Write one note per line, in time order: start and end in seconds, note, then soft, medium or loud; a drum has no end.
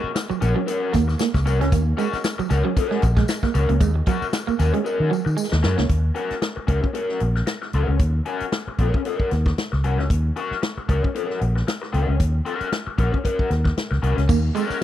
0.04 muted fingered electric bass stroke soft
0.15 muted overdriven electric guitar stroke soft
0.15 snare loud
0.15 closed hi-hat medium
0.15 tambourine loud
0.30 0.36 F#3 medium
0.30 muted overdriven electric guitar stroke soft
0.30 muted fingered electric bass stroke soft
0.30 tambourine soft
0.41 0.53 A#1 loud
0.41 0.58 C#4 medium
0.41 0.55 F#4 medium
0.41 0.55 A#4 medium
0.41 muted clean electric guitar stroke soft
0.41 closed hi-hat medium
0.41 tambourine medium
0.56 0.62 F#3 medium
0.56 muted overdriven electric guitar stroke soft
0.66 0.91 C#4 medium
0.66 0.92 F#4 medium
0.66 0.92 A#4 medium
0.66 closed hi-hat loud
0.66 tambourine soft
0.93 1.14 D#2 medium
0.93 1.02 A#3 medium
0.93 muted overdriven electric guitar stroke soft
0.93 kick medium
0.93 snare soft
0.93 closed hi-hat medium
0.93 tambourine medium
1.08 muted overdriven electric guitar stroke soft
1.08 snare soft
1.08 tambourine soft
1.19 1.28 A#3 medium
1.19 snare loud
1.19 closed hi-hat medium
1.19 tambourine loud
1.34 1.47 C#2 medium
1.34 muted overdriven electric guitar stroke medium
1.34 kick medium
1.34 snare soft
1.34 tambourine soft
1.46 1.61 C2 medium
1.46 1.63 C#4 medium
1.46 1.60 F#4 medium
1.46 1.59 A#4 loud
1.46 muted clean electric guitar stroke soft
1.46 closed hi-hat medium
1.46 tambourine medium
1.61 1.69 C#2 loud
1.61 1.67 C#4 medium
1.61 muted overdriven electric guitar stroke soft
1.61 snare soft
1.61 closed hi-hat medium
1.72 1.92 D#2 loud
1.72 1.80 A#3 medium
1.72 kick loud
1.72 closed hi-hat loud
1.72 tambourine medium
1.97 2.06 G#3 medium
1.97 2.15 C#4 loud
1.97 2.15 F#4 medium
1.97 2.15 A#4 medium
1.97 closed hi-hat medium
1.97 tambourine medium
2.13 muted clean electric guitar stroke soft
2.13 muted fingered electric bass stroke soft
2.13 snare soft
2.13 tambourine soft
2.24 muted overdriven electric guitar stroke soft
2.24 snare loud
2.24 closed hi-hat medium
2.24 tambourine loud
2.38 2.45 F#3 medium
2.38 muted overdriven electric guitar stroke soft
2.38 muted fingered electric bass stroke soft
2.38 tambourine soft
2.50 2.62 C#2 loud
2.50 2.67 C#4 medium
2.50 2.64 F#4 medium
2.50 2.63 A#4 medium
2.50 muted clean electric guitar stroke soft
2.50 snare soft
2.50 closed hi-hat medium
2.50 tambourine medium
2.65 2.71 F#3 medium
2.65 muted overdriven electric guitar stroke soft
2.77 3.01 C#4 medium
2.77 3.01 F#4 medium
2.77 3.02 A#4 medium
2.77 kick medium
2.77 closed hi-hat medium
2.77 tambourine medium
2.91 2.97 G#3 medium
2.91 snare soft
3.02 3.23 A#1 medium
3.02 muted clean electric guitar stroke soft
3.02 muted overdriven electric guitar stroke soft
3.02 kick medium
3.02 closed hi-hat medium
3.02 tambourine medium
3.17 3.23 G#3 medium
3.17 muted overdriven electric guitar stroke soft
3.17 kick loud
3.17 snare soft
3.17 tambourine soft
3.28 muted overdriven electric guitar stroke soft
3.28 snare loud
3.28 closed hi-hat medium
3.28 tambourine loud
3.43 3.49 A#3 medium
3.43 muted overdriven electric guitar stroke soft
3.43 kick medium
3.43 snare soft
3.43 tambourine soft
3.54 3.66 C#2 medium
3.54 3.72 C#4 medium
3.54 3.69 F#4 medium
3.54 3.69 A#4 medium
3.54 muted clean electric guitar stroke soft
3.54 closed hi-hat medium
3.54 tambourine medium
3.69 3.81 C#2 medium
3.69 3.75 A#3 medium
3.69 muted overdriven electric guitar stroke soft
3.69 closed hi-hat medium
3.80 4.01 D#2 medium
3.80 3.89 G#3 medium
3.80 kick loud
3.80 closed hi-hat medium
3.80 tambourine medium
3.96 muted clean electric guitar stroke soft
4.06 4.15 F#3 medium
4.06 4.24 C#4 medium
4.06 4.24 F#4 loud
4.06 4.25 A#4 loud
4.06 kick loud
4.06 closed hi-hat medium
4.06 tambourine medium
4.22 muted fingered electric bass stroke soft
4.22 tambourine soft
4.33 muted overdriven electric guitar stroke soft
4.33 snare loud
4.33 closed hi-hat medium
4.33 tambourine medium
4.47 4.54 A#3 medium
4.47 muted overdriven electric guitar stroke soft
4.47 muted fingered electric bass stroke soft
4.47 tambourine soft
4.59 4.71 D#2 loud
4.59 4.76 C#4 medium
4.59 4.73 F#4 medium
4.59 4.73 A#4 medium
4.59 muted clean electric guitar stroke soft
4.59 snare soft
4.59 closed hi-hat medium
4.59 tambourine medium
4.74 4.80 G#3 medium
4.74 muted overdriven electric guitar stroke medium
4.74 closed hi-hat medium
4.84 5.09 C#4 medium
4.84 5.09 F#4 loud
4.84 5.10 A#4 medium
4.84 tambourine medium
5.00 5.09 D#3 medium
5.11 5.19 F#3 medium
5.11 muted overdriven electric guitar stroke soft
5.11 tambourine soft
5.25 5.35 D#3 medium
5.25 muted overdriven electric guitar stroke soft
5.25 tambourine soft
5.37 5.45 G#3 medium
5.37 tambourine loud
5.52 5.61 D#2 medium
5.52 muted overdriven electric guitar stroke soft
5.52 snare medium
5.63 5.75 F#2 medium
5.63 5.80 C#4 medium
5.63 5.77 F#4 medium
5.63 5.77 A#4 medium
5.63 muted clean electric guitar stroke soft
5.63 snare loud
5.63 tambourine soft
5.78 5.87 C#2 medium
5.78 5.84 A#3 medium
5.78 muted overdriven electric guitar stroke soft
5.78 snare medium
5.89 6.10 D#2 medium
5.89 kick medium
5.89 closed hi-hat medium
6.15 6.32 C#4 medium
6.15 6.33 F#4 medium
6.15 6.33 A#4 medium
6.15 closed hi-hat medium
6.30 muted fingered electric bass stroke soft
6.30 snare soft
6.30 closed hi-hat soft
6.42 muted overdriven electric guitar stroke soft
6.42 snare loud
6.42 closed hi-hat medium
6.56 muted overdriven electric guitar stroke soft
6.56 muted fingered electric bass stroke soft
6.67 6.80 C#2 medium
6.67 6.85 C#4 medium
6.67 6.82 F#4 medium
6.67 6.81 A#4 medium
6.67 kick medium
6.67 closed hi-hat medium
6.82 muted overdriven electric guitar stroke soft
6.82 kick medium
6.93 7.18 C#4 medium
6.93 7.19 F#4 medium
6.93 7.19 A#4 medium
6.93 closed hi-hat medium
7.09 snare soft
7.20 7.41 A#1 medium
7.20 muted overdriven electric guitar stroke soft
7.20 closed hi-hat medium
7.36 muted overdriven electric guitar stroke soft
7.36 snare soft
7.47 muted overdriven electric guitar stroke soft
7.47 snare medium
7.47 closed hi-hat medium
7.62 muted overdriven electric guitar stroke soft
7.62 snare soft
7.73 7.85 C#2 medium
7.73 7.95 C#4 medium
7.73 7.88 F#4 medium
7.73 7.87 A#4 medium
7.73 closed hi-hat medium
7.88 7.97 C#2 medium
7.88 muted overdriven electric guitar stroke soft
7.99 8.20 D#2 loud
7.99 kick loud
7.99 closed hi-hat medium
8.26 8.43 C#4 medium
8.26 8.43 F#4 medium
8.26 8.43 A#4 medium
8.26 closed hi-hat medium
8.40 muted fingered electric bass stroke soft
8.40 closed hi-hat medium
8.52 muted overdriven electric guitar stroke soft
8.52 snare loud
8.52 closed hi-hat medium
8.67 muted fingered electric bass stroke soft
8.67 muted overdriven electric guitar stroke soft
8.78 8.90 A#1 medium
8.78 8.99 C#4 medium
8.78 8.94 F#4 medium
8.78 8.93 A#4 medium
8.78 kick medium
8.78 closed hi-hat medium
8.94 muted overdriven electric guitar stroke soft
8.94 kick medium
9.05 9.29 C#4 medium
9.05 9.30 F#4 medium
9.05 9.30 A#4 medium
9.05 closed hi-hat medium
9.20 kick medium
9.31 9.51 D#2 medium
9.31 muted overdriven electric guitar stroke soft
9.31 snare soft
9.31 closed hi-hat medium
9.46 muted overdriven electric guitar stroke medium
9.46 kick medium
9.46 snare soft
9.58 snare loud
9.58 closed hi-hat medium
9.72 9.84 C#2 medium
9.72 muted overdriven electric guitar stroke soft
9.72 snare soft
9.84 9.99 C2 medium
9.84 10.01 C#4 medium
9.84 9.98 F#4 medium
9.84 9.98 A#4 medium
9.84 closed hi-hat medium
9.99 10.07 C#2 medium
9.99 muted overdriven electric guitar stroke soft
9.99 snare soft
10.10 10.30 D#2 medium
10.10 kick loud
10.10 closed hi-hat medium
10.36 10.53 C#4 medium
10.36 10.53 F#4 medium
10.36 10.54 A#4 medium
10.36 closed hi-hat medium
10.51 muted fingered electric bass stroke soft
10.51 snare soft
10.62 muted overdriven electric guitar stroke soft
10.62 snare loud
10.62 closed hi-hat medium
10.77 muted fingered electric bass stroke soft
10.77 muted overdriven electric guitar stroke soft
10.89 11.00 C#2 medium
10.89 11.06 C#4 medium
10.89 11.03 F#4 medium
10.89 11.02 A#4 medium
10.89 kick medium
10.89 closed hi-hat medium
11.04 muted overdriven electric guitar stroke soft
11.04 kick medium
11.15 11.39 C#4 medium
11.15 11.40 F#4 medium
11.15 11.40 A#4 medium
11.15 closed hi-hat medium
11.30 snare soft
11.40 11.61 A#1 medium
11.40 muted overdriven electric guitar stroke soft
11.40 closed hi-hat medium
11.55 muted overdriven electric guitar stroke soft
11.55 snare soft
11.67 muted overdriven electric guitar stroke soft
11.67 snare loud
11.67 closed hi-hat medium
11.82 muted overdriven electric guitar stroke soft
11.82 snare soft
11.93 12.05 C#2 medium
11.93 12.14 C#4 medium
11.93 12.08 F#4 medium
11.93 12.07 A#4 medium
11.93 closed hi-hat medium
12.08 12.17 C#2 medium
12.08 muted overdriven electric guitar stroke soft
12.20 12.40 D#2 medium
12.20 kick medium
12.20 closed hi-hat medium
12.45 12.66 C#4 medium
12.45 12.67 F#4 medium
12.45 12.67 A#4 loud
12.45 closed hi-hat medium
12.61 muted fingered electric bass stroke soft
12.61 closed hi-hat medium
12.72 muted overdriven electric guitar stroke soft
12.72 snare loud
12.72 closed hi-hat medium
12.87 muted overdriven electric guitar stroke soft
12.87 muted fingered electric bass stroke soft
12.98 13.10 A#1 medium
12.98 13.15 C#4 medium
12.98 13.13 F#4 medium
12.98 13.12 A#4 medium
12.98 kick medium
12.98 closed hi-hat medium
13.13 muted overdriven electric guitar stroke soft
13.13 kick medium
13.24 13.49 C#4 medium
13.24 13.49 F#4 medium
13.24 13.49 A#4 medium
13.24 kick medium
13.24 closed hi-hat medium
13.39 kick medium
13.50 13.70 D#2 medium
13.50 muted overdriven electric guitar stroke soft
13.50 snare soft
13.50 closed hi-hat medium
13.65 muted overdriven electric guitar stroke soft
13.65 kick medium
13.65 snare soft
13.78 snare medium
13.78 closed hi-hat medium
13.91 14.00 C#2 medium
13.91 muted overdriven electric guitar stroke medium
13.91 snare soft
14.02 14.14 C2 medium
14.02 14.20 C#4 medium
14.02 14.17 F#4 medium
14.02 14.16 A#4 medium
14.02 closed hi-hat medium
14.17 14.26 C#2 medium
14.17 muted overdriven electric guitar stroke soft
14.17 snare soft
14.17 closed hi-hat medium
14.29 14.49 D#2 loud
14.29 14.37 A#3 medium
14.29 kick loud
14.29 crash loud
14.29 tambourine medium
14.55 14.63 G#3 medium
14.55 14.76 C#4 loud
14.55 14.76 F#4 medium
14.55 14.76 A#4 loud
14.55 closed hi-hat medium
14.55 tambourine medium
14.69 muted clean electric guitar stroke soft
14.69 muted fingered electric bass stroke soft
14.69 snare soft
14.69 tambourine soft